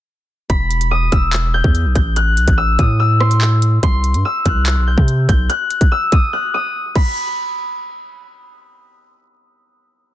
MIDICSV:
0, 0, Header, 1, 4, 480
1, 0, Start_track
1, 0, Key_signature, 1, "minor"
1, 0, Tempo, 416667
1, 573, Time_signature, 4, 2, 24, 8
1, 11685, End_track
2, 0, Start_track
2, 0, Title_t, "Harp"
2, 0, Program_c, 0, 46
2, 573, Note_on_c, 0, 83, 108
2, 1051, Note_on_c, 0, 87, 87
2, 1289, Note_on_c, 0, 88, 81
2, 1358, Note_off_c, 0, 87, 0
2, 1774, Note_on_c, 0, 91, 91
2, 2131, Note_off_c, 0, 83, 0
2, 2249, Note_off_c, 0, 91, 0
2, 2254, Note_on_c, 0, 91, 84
2, 2492, Note_on_c, 0, 90, 114
2, 2561, Note_off_c, 0, 91, 0
2, 2599, Note_off_c, 0, 88, 0
2, 2968, Note_on_c, 0, 88, 92
2, 3214, Note_on_c, 0, 87, 82
2, 3283, Note_off_c, 0, 88, 0
2, 3452, Note_on_c, 0, 88, 92
2, 3521, Note_off_c, 0, 87, 0
2, 3688, Note_on_c, 0, 84, 87
2, 3714, Note_off_c, 0, 90, 0
2, 4412, Note_off_c, 0, 84, 0
2, 4416, Note_on_c, 0, 84, 114
2, 4761, Note_off_c, 0, 88, 0
2, 4898, Note_on_c, 0, 88, 94
2, 5135, Note_on_c, 0, 90, 88
2, 5614, Note_on_c, 0, 91, 75
2, 5683, Note_off_c, 0, 90, 0
2, 5921, Note_off_c, 0, 84, 0
2, 6085, Note_off_c, 0, 91, 0
2, 6090, Note_on_c, 0, 91, 89
2, 6207, Note_off_c, 0, 88, 0
2, 6329, Note_on_c, 0, 90, 109
2, 6398, Note_off_c, 0, 91, 0
2, 6816, Note_on_c, 0, 88, 85
2, 7061, Note_on_c, 0, 87, 85
2, 7130, Note_off_c, 0, 88, 0
2, 7289, Note_off_c, 0, 90, 0
2, 7294, Note_on_c, 0, 90, 83
2, 7531, Note_off_c, 0, 87, 0
2, 7536, Note_on_c, 0, 87, 77
2, 8012, Note_on_c, 0, 83, 89
2, 8516, Note_off_c, 0, 90, 0
2, 8892, Note_off_c, 0, 87, 0
2, 9646, Note_off_c, 0, 83, 0
2, 11685, End_track
3, 0, Start_track
3, 0, Title_t, "808-style bass"
3, 0, Program_c, 1, 38
3, 573, Note_on_c, 1, 28, 112
3, 1264, Note_off_c, 1, 28, 0
3, 1293, Note_on_c, 1, 28, 105
3, 1869, Note_off_c, 1, 28, 0
3, 1892, Note_on_c, 1, 40, 109
3, 2133, Note_on_c, 1, 35, 101
3, 2150, Note_off_c, 1, 40, 0
3, 2247, Note_off_c, 1, 35, 0
3, 2252, Note_on_c, 1, 33, 106
3, 2733, Note_on_c, 1, 35, 98
3, 2750, Note_off_c, 1, 33, 0
3, 2846, Note_off_c, 1, 35, 0
3, 2852, Note_on_c, 1, 33, 104
3, 3198, Note_off_c, 1, 33, 0
3, 3213, Note_on_c, 1, 45, 110
3, 4367, Note_off_c, 1, 45, 0
3, 4412, Note_on_c, 1, 36, 113
3, 4773, Note_on_c, 1, 43, 99
3, 4790, Note_off_c, 1, 36, 0
3, 4886, Note_off_c, 1, 43, 0
3, 5133, Note_on_c, 1, 36, 111
3, 5492, Note_on_c, 1, 35, 97
3, 5510, Note_off_c, 1, 36, 0
3, 5720, Note_off_c, 1, 35, 0
3, 5732, Note_on_c, 1, 48, 104
3, 6078, Note_off_c, 1, 48, 0
3, 6092, Note_on_c, 1, 35, 104
3, 6323, Note_off_c, 1, 35, 0
3, 11685, End_track
4, 0, Start_track
4, 0, Title_t, "Drums"
4, 573, Note_on_c, 9, 36, 127
4, 573, Note_on_c, 9, 42, 88
4, 688, Note_off_c, 9, 36, 0
4, 688, Note_off_c, 9, 42, 0
4, 813, Note_on_c, 9, 42, 81
4, 928, Note_off_c, 9, 42, 0
4, 933, Note_on_c, 9, 42, 81
4, 1048, Note_off_c, 9, 42, 0
4, 1292, Note_on_c, 9, 42, 70
4, 1293, Note_on_c, 9, 36, 90
4, 1407, Note_off_c, 9, 42, 0
4, 1408, Note_off_c, 9, 36, 0
4, 1531, Note_on_c, 9, 39, 127
4, 1532, Note_on_c, 9, 42, 91
4, 1646, Note_off_c, 9, 39, 0
4, 1647, Note_off_c, 9, 42, 0
4, 1892, Note_on_c, 9, 36, 99
4, 2007, Note_off_c, 9, 36, 0
4, 2012, Note_on_c, 9, 42, 63
4, 2128, Note_off_c, 9, 42, 0
4, 2252, Note_on_c, 9, 36, 93
4, 2252, Note_on_c, 9, 42, 83
4, 2367, Note_off_c, 9, 36, 0
4, 2367, Note_off_c, 9, 42, 0
4, 2492, Note_on_c, 9, 42, 85
4, 2607, Note_off_c, 9, 42, 0
4, 2732, Note_on_c, 9, 42, 85
4, 2847, Note_off_c, 9, 42, 0
4, 2852, Note_on_c, 9, 36, 91
4, 2852, Note_on_c, 9, 42, 77
4, 2967, Note_off_c, 9, 42, 0
4, 2968, Note_off_c, 9, 36, 0
4, 3212, Note_on_c, 9, 42, 72
4, 3213, Note_on_c, 9, 36, 94
4, 3327, Note_off_c, 9, 42, 0
4, 3328, Note_off_c, 9, 36, 0
4, 3692, Note_on_c, 9, 37, 109
4, 3807, Note_off_c, 9, 37, 0
4, 3812, Note_on_c, 9, 42, 71
4, 3927, Note_off_c, 9, 42, 0
4, 3932, Note_on_c, 9, 39, 116
4, 4047, Note_off_c, 9, 39, 0
4, 4172, Note_on_c, 9, 42, 84
4, 4288, Note_off_c, 9, 42, 0
4, 4412, Note_on_c, 9, 36, 123
4, 4412, Note_on_c, 9, 42, 88
4, 4527, Note_off_c, 9, 42, 0
4, 4528, Note_off_c, 9, 36, 0
4, 4652, Note_on_c, 9, 42, 86
4, 4767, Note_off_c, 9, 42, 0
4, 4772, Note_on_c, 9, 42, 80
4, 4888, Note_off_c, 9, 42, 0
4, 5132, Note_on_c, 9, 42, 73
4, 5133, Note_on_c, 9, 36, 92
4, 5248, Note_off_c, 9, 36, 0
4, 5248, Note_off_c, 9, 42, 0
4, 5372, Note_on_c, 9, 39, 127
4, 5373, Note_on_c, 9, 42, 93
4, 5488, Note_off_c, 9, 39, 0
4, 5488, Note_off_c, 9, 42, 0
4, 5732, Note_on_c, 9, 36, 97
4, 5848, Note_off_c, 9, 36, 0
4, 5852, Note_on_c, 9, 42, 60
4, 5968, Note_off_c, 9, 42, 0
4, 6092, Note_on_c, 9, 36, 94
4, 6092, Note_on_c, 9, 42, 83
4, 6207, Note_off_c, 9, 36, 0
4, 6208, Note_off_c, 9, 42, 0
4, 6333, Note_on_c, 9, 42, 86
4, 6448, Note_off_c, 9, 42, 0
4, 6572, Note_on_c, 9, 42, 85
4, 6688, Note_off_c, 9, 42, 0
4, 6692, Note_on_c, 9, 42, 77
4, 6693, Note_on_c, 9, 36, 88
4, 6808, Note_off_c, 9, 36, 0
4, 6808, Note_off_c, 9, 42, 0
4, 7052, Note_on_c, 9, 42, 70
4, 7053, Note_on_c, 9, 36, 91
4, 7167, Note_off_c, 9, 42, 0
4, 7168, Note_off_c, 9, 36, 0
4, 8012, Note_on_c, 9, 36, 107
4, 8012, Note_on_c, 9, 49, 87
4, 8127, Note_off_c, 9, 36, 0
4, 8127, Note_off_c, 9, 49, 0
4, 11685, End_track
0, 0, End_of_file